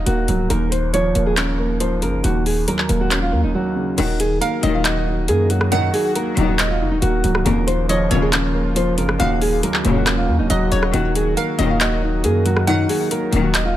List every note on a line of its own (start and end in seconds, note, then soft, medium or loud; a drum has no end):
0.00 0.52 D#3 medium
0.00 0.29 F#3 medium
0.00 0.07 A#3 medium
0.00 0.52 D#4 medium
0.00 0.50 D#5 loud
0.06 0.27 D#1 loud
0.06 0.50 A#3 medium
0.06 0.47 F#4 medium
0.06 closed hi-hat medium
0.28 0.49 C#1 loud
0.28 0.50 F#3 medium
0.28 closed hi-hat medium
0.49 1.13 D#1 loud
0.49 1.58 D#2 medium
0.49 0.69 A#4 loud
0.49 closed hi-hat medium
0.71 0.91 C5 medium
0.71 closed hi-hat medium
0.93 1.79 F3 medium
0.93 1.24 C#5 medium
0.93 closed hi-hat medium
1.15 2.04 D#1 loud
1.15 1.58 A#3 medium
1.15 closed hi-hat medium
1.26 1.36 G#4 medium
1.37 2.24 C#4 loud
1.37 1.78 A#4 medium
1.37 clap loud
1.37 closed hi-hat medium
1.59 2.24 A#3 medium
1.80 2.24 F3 medium
1.80 2.00 C5 medium
1.80 closed hi-hat medium
2.02 2.23 F#1 loud
2.02 2.24 C#3 medium
2.02 2.22 A#4 medium
2.02 closed hi-hat medium
2.23 2.66 D#1 loud
2.23 3.32 D#2 medium
2.23 2.43 F#4 medium
2.23 closed hi-hat medium
2.46 2.65 G#4 medium
2.46 open hi-hat medium
2.68 3.53 F#3 medium
2.68 2.98 A#4 medium
2.68 closed hi-hat medium
2.79 clap medium
2.89 3.34 D#1 loud
2.89 3.31 A#3 medium
2.89 closed hi-hat medium
3.01 3.20 F#4 medium
3.11 3.98 C#4 medium
3.11 clap loud
3.11 closed hi-hat medium
3.22 3.41 F4 medium
3.32 3.45 D#2 loud
3.32 3.98 A#3 medium
3.43 3.54 D#1 loud
3.43 3.53 D#4 medium
3.54 3.98 F#3 medium
3.54 3.95 F#4 medium
3.76 3.98 C#3 medium
3.98 4.40 D#1 loud
3.98 4.07 F#2 loud
3.98 4.07 A#2 loud
3.98 5.06 D#3 loud
3.98 4.07 D#3 loud
3.98 7.42 D#3 medium
3.98 7.42 F#3 medium
3.98 13.77 A#3 medium
3.98 7.42 F#4 medium
3.98 4.17 F#4 loud
3.98 closed hi-hat medium
3.98 crash loud
4.20 4.39 G#4 medium
4.20 closed hi-hat medium
4.41 5.27 A#3 medium
4.41 4.72 A#4 medium
4.41 4.62 F5 medium
4.41 closed hi-hat medium
4.63 5.30 D#1 loud
4.63 5.04 F#2 loud
4.63 5.04 A#2 loud
4.63 5.04 D#3 loud
4.63 5.05 D#4 medium
4.63 5.24 D#5 medium
4.63 closed hi-hat medium
4.74 4.84 F4 medium
4.85 5.26 F#4 medium
4.85 5.94 D#5 loud
4.85 clap loud
4.85 closed hi-hat medium
5.06 6.15 D#4 medium
5.28 5.90 F#2 loud
5.28 6.14 A#3 medium
5.28 5.48 G#4 medium
5.28 closed hi-hat medium
5.50 6.59 F#3 medium
5.50 5.69 F#4 medium
5.50 closed hi-hat medium
5.61 cross-stick medium
5.72 5.81 F#2 medium
5.72 5.81 A#2 medium
5.72 5.81 D#3 loud
5.72 6.81 D#3 medium
5.72 5.91 D#4 medium
5.72 6.55 F#5 loud
5.72 closed hi-hat medium
5.94 6.13 G#4 medium
5.94 open hi-hat medium
6.16 7.01 A#3 medium
6.16 6.46 A#4 medium
6.16 closed hi-hat medium
6.37 6.82 D#1 loud
6.37 6.78 F#2 loud
6.37 6.78 A#2 loud
6.37 6.78 D#3 loud
6.37 6.79 D#4 medium
6.37 closed hi-hat medium
6.48 6.67 F#4 medium
6.59 7.46 D#5 loud
6.59 clap loud
6.59 closed hi-hat medium
6.70 6.89 F4 medium
6.81 6.93 F1 loud
6.81 7.46 D#4 medium
6.91 7.02 D#1 loud
6.91 7.01 D#4 medium
7.02 7.23 D#1 loud
7.02 7.46 A#3 medium
7.02 7.43 F#4 medium
7.02 closed hi-hat medium
7.24 7.45 C#1 loud
7.24 7.46 F#3 medium
7.24 closed hi-hat medium
7.35 cross-stick medium
7.45 8.08 D#1 loud
7.45 8.54 D#2 medium
7.45 7.55 F2 loud
7.45 7.55 A#2 loud
7.45 9.18 C#3 medium
7.45 7.55 C#3 loud
7.45 9.18 F3 medium
7.45 9.18 F4 medium
7.45 7.65 A#4 loud
7.45 closed hi-hat medium
7.67 7.87 C5 medium
7.67 closed hi-hat medium
7.89 8.75 F3 medium
7.89 8.20 C#5 medium
7.89 8.10 D#5 medium
7.89 closed hi-hat medium
8.11 8.99 D#1 loud
8.11 8.52 F2 medium
8.11 8.52 A#2 loud
8.11 8.52 C#3 loud
8.11 8.53 A#3 medium
8.11 8.72 C#5 medium
8.11 closed hi-hat medium
8.22 8.32 G#4 medium
8.33 9.20 C#4 loud
8.33 clap loud
8.33 closed hi-hat medium
8.55 9.20 A#3 medium
8.76 9.20 F3 medium
8.76 8.96 C5 medium
8.76 closed hi-hat medium
8.98 9.19 F#1 loud
8.98 9.19 C#3 medium
8.98 9.17 A#4 medium
8.98 closed hi-hat medium
9.09 cross-stick medium
9.19 9.61 D#1 loud
9.19 10.28 D#2 medium
9.19 9.29 F#2 medium
9.19 9.29 A#2 loud
9.19 9.29 C#3 loud
9.19 10.92 C#3 medium
9.19 13.77 F#3 medium
9.19 13.77 F#4 medium
9.19 9.39 F#4 medium
9.19 10.03 F5 loud
9.19 closed hi-hat medium
9.42 9.61 G#4 medium
9.42 open hi-hat medium
9.63 10.49 F#3 medium
9.63 9.94 A#4 medium
9.63 closed hi-hat medium
9.74 clap medium
9.85 10.30 D#1 loud
9.85 10.26 F#2 loud
9.85 10.26 A#2 loud
9.85 10.26 C#3 loud
9.85 10.26 A#3 medium
9.85 closed hi-hat medium
9.96 10.15 F#4 medium
10.06 10.93 C#4 medium
10.06 cross-stick medium
10.06 clap loud
10.06 closed hi-hat medium
10.17 10.36 F4 medium
10.28 10.41 D#2 loud
10.28 10.93 A#3 medium
10.39 10.50 D#1 loud
10.39 10.49 D#4 medium
10.50 10.71 D#1 loud
10.50 10.94 F#3 medium
10.50 10.91 F#4 medium
10.50 10.71 D#5 medium
10.50 closed hi-hat medium
10.72 10.93 D#1 loud
10.72 10.94 C#3 medium
10.72 10.92 C#5 medium
10.72 closed hi-hat medium
10.83 cross-stick medium
10.94 11.35 D#1 loud
10.94 11.03 F#2 loud
10.94 11.03 A#2 medium
10.94 12.02 D#3 medium
10.94 13.77 D#3 medium
10.94 11.03 D#3 loud
10.94 11.13 F#4 loud
10.94 closed hi-hat medium
11.15 11.35 G#4 medium
11.15 closed hi-hat medium
11.37 12.22 A#3 medium
11.37 11.68 A#4 medium
11.37 11.58 F5 medium
11.37 closed hi-hat medium
11.59 12.26 D#1 loud
11.59 12.00 F#2 loud
11.59 12.00 A#2 loud
11.59 12.00 D#3 loud
11.59 12.01 D#4 medium
11.59 12.20 D#5 medium
11.59 closed hi-hat medium
11.69 11.79 F4 medium
11.80 12.21 F#4 medium
11.80 12.89 D#5 loud
11.80 clap loud
11.80 closed hi-hat medium
12.02 13.11 D#4 medium
12.24 12.86 F#2 loud
12.24 13.09 A#3 loud
12.24 12.44 G#4 medium
12.24 closed hi-hat medium
12.45 13.55 F#3 medium
12.45 12.65 F#4 medium
12.45 closed hi-hat medium
12.57 cross-stick medium
12.67 12.77 F#2 medium
12.67 12.77 A#2 medium
12.67 12.77 D#3 loud
12.67 13.76 D#3 loud
12.67 12.87 D#4 medium
12.67 13.50 F#5 loud
12.67 closed hi-hat medium
12.89 13.08 G#4 medium
12.89 open hi-hat medium
13.11 13.77 A#3 medium
13.11 13.42 A#4 medium
13.11 closed hi-hat medium
13.33 13.77 D#1 loud
13.33 13.74 F#2 medium
13.33 13.74 A#2 loud
13.33 13.74 D#3 loud
13.33 13.75 D#4 medium
13.33 closed hi-hat medium
13.44 13.63 F#4 medium
13.54 13.77 D#5 loud
13.54 clap loud
13.54 closed hi-hat medium
13.65 13.77 F4 medium